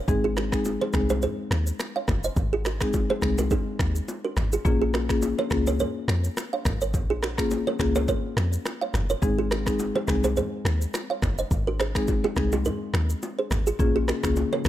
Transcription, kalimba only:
0.24 F4 G#4
0.37 F#4 A#4
0.81 G#4 C5
1.10 G#4 C5
1.23 G#4 C5
1.96 C#5 F5
2.24 C5 D#5
2.53 F4 G#4
2.66 F#4 A#4
3.10 G#4 C5
3.39 F#4 A#4
3.52 D#4 G#4
4.25 F#4 A#4
4.53 F4 G#4
4.82 F4 G#4
4.94 F#4 A#4
5.39 A#4 C#5
5.67 A#4 C#5
5.80 A#4 C#5
6.53 C#5 F5
6.82 A#4 C#5
7.10 F4 G#4
7.23 F#4 A#4
7.67 A#4 C#5
7.96 A#4 C#5
8.09 A#4 C#5
8.81 C#5 F5
9.10 A#4 C#5
9.39 F4 G#4
9.52 F#4 A#4
9.96 G#4 C5
10.24 G#4 C5
10.37 G#4 C5
11.10 C#5 F5
11.39 C5 D#5
11.67 F#4 A#4
11.80 G#4 C5
12.25 F4 G#4
12.53 F4 G#4
12.66 D#4 A#4
13.39 G#4 C5
13.67 F4 G#4
13.96 F4 G#4
14.09 F#4 A#4
14.53 A#4 C#5

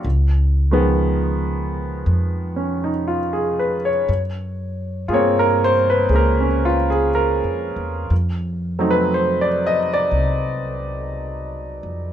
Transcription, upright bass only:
0.04 C#2
2.06 F2
4.09 F#2
5.09 G2
6.09 C#2
7.44 F2
7.76 E2
8.10 F2
10.11 C2
11.83 F2

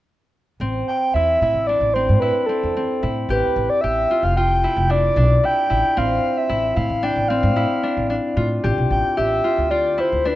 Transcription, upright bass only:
0.60 A1
1.14 E2
1.41 A2
1.54 A1
1.80 A1
2.09 A2
2.63 E2
3.03 A2
3.29 A1
3.43 D2
3.56 A1
3.84 A1
4.23 F1
4.76 F1
5.16 B1
5.70 A1
5.97 A1
6.50 A1
6.77 A2
6.90 A1
7.16 A1
7.43 A2
7.97 A1
8.37 A2
8.64 A1
8.78 B1
8.91 A1
9.18 A1
9.58 D2
10.12 D2

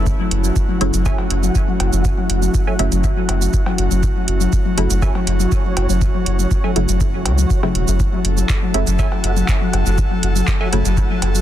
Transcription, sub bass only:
Already playing: F#1
0.31 F#1
0.81 F#1
0.94 F#1
1.31 F#1
1.80 F#1
1.93 F#1
2.30 F#1
2.79 F#1
2.92 F#1
3.29 F#1
3.78 F#1
3.91 F#1
4.28 F#1
4.78 F#1
4.90 F#1
5.27 F#1
5.77 F#1
5.90 F#1
6.26 F#1
6.76 F#1
6.89 F#1
7.26 C#2
7.75 E1
7.88 F#1
8.25 F#1
8.74 F#1
8.87 F#1
9.24 F#1
9.73 F#1
9.86 F#1
10.23 F#1
10.73 F#1
10.85 F#1
11.22 F#1

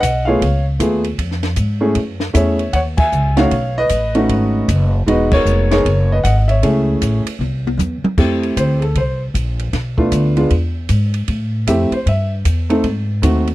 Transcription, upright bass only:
0.03 B1
0.42 C#2
0.80 D#2
1.18 F2
1.57 G#2
1.95 F#2
2.34 E2
2.73 D#2
3.12 C#2
3.51 B1
3.90 A1
4.29 G#1
4.68 F#1
5.07 E1
5.45 F1
5.85 F#1
6.24 G#1
6.63 C#2
7.01 A1
7.25 muted upright bass stroke
7.39 C2
7.77 E2
8.02 muted upright bass stroke
8.17 F2
8.57 D2
8.95 C2
9.34 A#1
9.73 B1
10.12 D2
10.50 E2
10.89 G#2
11.28 A2
11.67 F2
11.91 muted upright bass stroke
12.06 G2
12.45 E2
12.84 G#2
13.22 D#2

